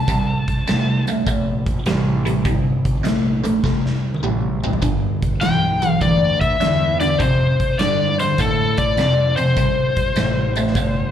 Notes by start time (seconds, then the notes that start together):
Already playing: A5
0.08 C2 C3 G3, kick, closed hi-hat
0.48 muted fingered electric bass stroke, kick, closed hi-hat
0.67 C2 C3 A3, snare, closed hi-hat
1.07 C3 A3, closed hi-hat
1.27 A#1 C3 A3, kick, closed hi-hat
1.66 kick, closed hi-hat
1.86 A1 C3 G3, snare, closed hi-hat
2.25 C3 G3, closed hi-hat
2.45 G1 C3 G3, kick, closed hi-hat
2.85 kick, closed hi-hat
3.04 A#1 C3 A3, snare, closed hi-hat
3.44 C3 A3, closed hi-hat
3.64 C2 C3 A3, kick, snare
3.86 snare
4.14 high tom
4.23 A1 C3 G3, mid tom
4.64 C3 G3, floor tom
4.73 floor tom
4.82 G1 G2 D3, kick, closed hi-hat
5.22 kick, closed hi-hat
5.41 B1 G2 E3 G5, snare, closed hi-hat
5.82 G2 E3, closed hi-hat
5.89 F5
6.01 D2 G2 E3 D5, kick, closed hi-hat
6.41 E5, kick, closed hi-hat
6.60 E2 G2 D3, snare, closed hi-hat
7.00 G2 D3 D5, snare, closed hi-hat
7.18 F2 C3 C5, kick, closed hi-hat
7.60 muted fingered electric bass stroke, kick, closed hi-hat
7.79 F2 G2 D3 D5, snare, closed hi-hat
8.19 F2 D3 C5, closed hi-hat
8.38 F2 A2 D3 A4, kick, closed hi-hat
8.77 D5, kick, closed hi-hat
8.97 F2 C3, snare, closed hi-hat
9.36 F2 C3 C5, closed hi-hat
9.57 C2 C3 G3, kick, closed hi-hat
9.96 kick, closed hi-hat
10.16 A1 C3 A3, snare, closed hi-hat
10.56 C3 A3, closed hi-hat
10.67 snare
10.75 G1 C3 A3, kick, closed hi-hat